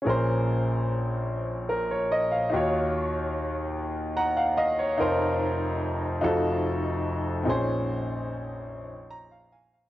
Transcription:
\new Staff \with { instrumentName = "Grand piano" } { \time 6/8 \key bes \minor \tempo 4. = 49 << { r2 bes'16 des''16 ees''16 f''16~ | f''16 r4. r16 <ges'' bes''>16 <f'' ges''>16 <ees'' f''>16 des''16~ | des''16 r2 r8. | r2 bes''16 f''16 <f'' aes''>16 f''16 | } \\ { <bes,, bes, des' aes' bes' c''>2. | <ees, ees ees' f' ges' des''>2. | <f,, f, ees' f' bes' c''>4. <f,, f, ees' f' ges' a'>4. | <bes,, bes, c' des' ees' aes' c''>2. | } >> }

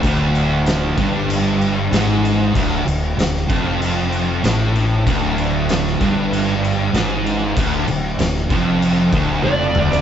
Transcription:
<<
  \new Staff \with { instrumentName = "Lead electric guitar" } { \time 4/4 \key d \minor \tempo 4 = 96 r1 | r1 | r1 | r2. d''4 | }
  \new Staff \with { instrumentName = "Distorted electric guitar" } { \clef bass \time 4/4 \key d \minor d,4. g,4. gis,4 | d,8 d,8 d,8 f,4. a,4 | d,4. g,4. gis,4 | d,8 d,8 d,8 f,4 d,8 f,8 d,8 | }
  \new Staff \with { instrumentName = "Distorted electric guitar" } { \clef bass \time 4/4 \key d \minor d,4. g,4. gis,4 | d,8 d,8 d,8 f,4. a,4 | d,4. g,4. gis,4 | d,8 d,8 d,8 f,4 d,8 f,8 d,8 | }
  \new Staff \with { instrumentName = "Distorted electric guitar" } { \clef bass \time 4/4 \key d \minor d,4. g,4. gis,4 | d,8 d,8 d,8 f,4. a,4 | d,4. g,4. gis,4 | d,8 d,8 d,8 f,4 d,8 f,8 d,8 | }
  \new Staff \with { instrumentName = "Fingered electric bass" } { \clef bass \time 4/4 \key d \minor d,,4. g,,4. gis,,4 | d,,8 d,,8 d,,8 f,,4. a,,4 | d,,4. g,,4. gis,,4 | d,,8 d,,8 d,,8 f,,4 d,,8 f,,8 d,,8 | }
  \new DrumStaff \with { instrumentName = "Drums" } \drummode { \time 4/4 <cymc bd>8 cymc8 <cymc sn>8 <cymc bd>8 cymc8 cymc8 <cymc sn>8 cymc8 | <cymc bd>8 cymc8 <cymc sn>16 sn16 <cymc bd>8 cymc8 cymc8 <cymc sn>8 cymc8 | <cymc bd>8 cymc8 <cymc sn>16 sn16 <cymc bd>8 cymc8 cymc8 <cymc sn>8 cymc8 | <cymc bd>8 cymc8 <cymc sn>16 sn16 <cymc bd>8 cymc8 <cymc bd>8 tommh8 toml16 sn16 | }
>>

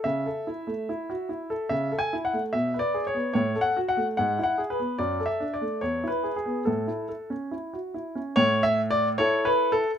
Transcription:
\new Staff \with { instrumentName = "Grand piano" } { \time 2/4 \key a \major \tempo 4 = 72 << { e''2 | \tuplet 3/2 { e''8 gis''8 fis''8 e''8 d''8 cis''8 } | \tuplet 3/2 { cis''8 fis''8 fis''8 fis''8 fis''8 b'8 } | \tuplet 3/2 { d''8 e''8 d''8 cis''8 b'8 gis'8 } |
a'4 r4 | \tuplet 3/2 { cis''8 e''8 d''8 cis''8 b'8 a'8 } | } \\ { cis16 a'16 e'16 a16 e'16 fis'16 e'16 a'16 | cis16 a'16 e'16 a16 b,16 b'16 gis'16 b16 | a,16 a'16 fis'16 a16 gis,16 e'16 gis'16 b16 | fis,16 a'16 d'16 a16 e,16 e'16 gis'16 b16 |
a,16 e'16 a'16 cis'16 e'16 fis'16 e'16 cis'16 | a,4 <e' a'>4 | } >> }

